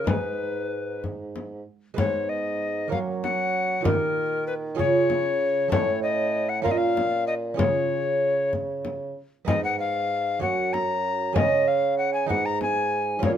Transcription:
0.04 G#2 G#3 D#4 G#4 B4, frame drum
1.04 frame drum
1.36 frame drum
1.94 G#2 G#3 B3 B4, frame drum
1.98 C#5
2.29 D#5
2.88 F#3 A#3 C#4 A#4 F5
2.92 F#3, frame drum
3.23 F#5, frame drum
3.81 A#2 D#3 D#4 G4
3.85 D#3 A#4, frame drum
4.47 B4
4.75 C#3 C#4 F4 G#4 C#5
4.79 C#3, frame drum
5.10 frame drum
5.68 A2 C#4 A4 C#5, frame drum
5.73 A2
6.03 D#5
6.49 F#5
6.62 A#2 C#4 F4 A#4 F5, frame drum
6.66 A#2
6.71 D#5
6.77 F5
6.97 frame drum
7.27 D#5
7.54 C#4 F4 G#4
7.58 C#3 C#5, frame drum
8.53 frame drum
8.85 frame drum
9.45 G#2 B3 D#4 G#4 D#5, frame drum
9.64 F#5
9.79 F5
10.39 F#2 C#4 F#4 C#5 F#5, frame drum
10.73 A#5, frame drum
11.33 C#3 C#4 G#4 C#5 D#5, frame drum
11.68 F5
11.98 F#5
12.14 G#5
12.26 G#2 D#4 G#4 B4 F#5, frame drum
12.45 A#5
12.61 G#5, frame drum
13.19 C#4 F4 A#4, frame drum
13.23 A#2 C#5

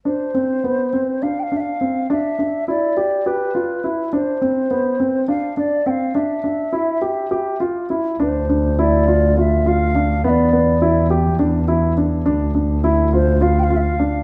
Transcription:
0.05 D4 C5
0.34 C4
0.64 B3
0.93 C4
1.23 D4 F5
1.40 F5 G5
1.52 D4
1.57 E5 F5
1.81 C4
2.10 D4 E5
2.39 D4
2.68 E4 D5
2.97 G4
3.26 G4 B4
3.55 F4
3.84 E4
4.13 D4 C5
4.42 C4
4.71 B3
5.00 C4
5.28 D4 F5
5.57 D4 D5
5.86 C4 G5
5.90 F5
6.15 D4 E5
6.44 D4
6.73 E4
7.02 G4
7.31 G4
7.60 F4
7.90 E4
8.20 D2 D4 C5
8.49 D4
8.79 E4 D5
9.07 F4
9.37 F4 E5
9.66 F4 F5
9.95 D4
10.24 E2 B3 E5
10.29 D5
10.53 B3
10.82 E4
11.10 G4
11.39 D4
11.68 E4
11.97 D4
12.26 D2 D4
12.55 D4
12.84 E4
13.13 F4 C5
13.41 F4 F5
13.59 G5
13.64 F5
13.70 F4
13.76 E5
13.81 F5
13.99 D4

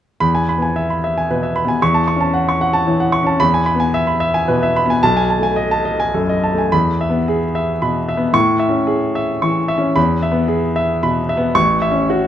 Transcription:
0.20 E2 B5
0.35 G#5
0.49 B5
0.58 B3
0.62 G#5
0.76 E5
0.90 B5
1.04 E5
1.18 G#5
1.30 B2 B4
1.43 E5
1.56 B5
1.65 B3 G#5
1.82 E2 C#6
1.94 A5
2.08 C#6
2.16 C#4
2.21 A5
2.34 F#5
2.49 C#6
2.61 F#5
2.73 A5
2.87 E3 C#5
3.00 F#5
3.12 C#6
3.23 C#4 A5
3.40 E2 B5
3.54 G#5
3.66 B5
3.75 B3
3.80 G#5
3.94 E5
4.07 B5
4.20 E5
4.34 G#5
4.48 B2 B4
4.63 E5
4.76 B5
4.86 B3
4.90 G#5
5.03 B1 A5
5.17 G#5
5.30 A5
5.39 A3 G#5
5.56 D#5
5.71 A5
5.85 D#5
6.00 G#5
6.14 F#2 A4
6.29 D#5
6.44 A5
6.54 A3
6.58 G#5
6.72 E2 B5
7.01 E5
7.10 B3
7.28 G#4
7.55 E5
7.82 B2 B5
8.09 E5
8.17 B3
8.33 A2 C#6
8.60 E5
8.69 C#4
8.87 G#4
9.15 E5
9.42 E3 C#6
9.68 E5
9.78 C#4
9.96 E2 B5
10.22 E5
10.32 B3
10.48 G#4
10.76 E5
11.03 B2 B5
11.29 E5
11.37 B3
11.55 A1 C#6
11.82 E5
11.91 C#4
12.10 F#4

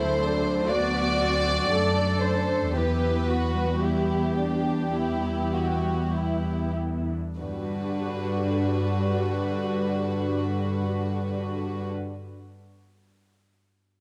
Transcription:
Already playing: D2 D3 F#3 A3 C4 E4 F#4 A4 C5
0.21 A3 D4 B5
0.45 A4
0.70 F#3 B3 F#4 D5
0.94 A4
1.20 C4 F#4
1.46 C4
1.70 F#2 F#3 A3 D4 A4
1.96 A4
2.21 A3 C5 B5
2.48 A4
2.74 E2 E3 B3 E4 G4 B4
3.01 E4
3.28 B3 F#4
3.54 G3
3.82 B3 E4 G4
4.37 D4 A4
4.94 G3 B3 E4
5.53 B3 F#4
5.82 G3
6.13 B3 E4
6.76 A4
7.09 D4
7.39 G2 D3 G3 D4 F#4 B4
7.47 G3
7.54 B3
7.61 F#4
7.69 B4

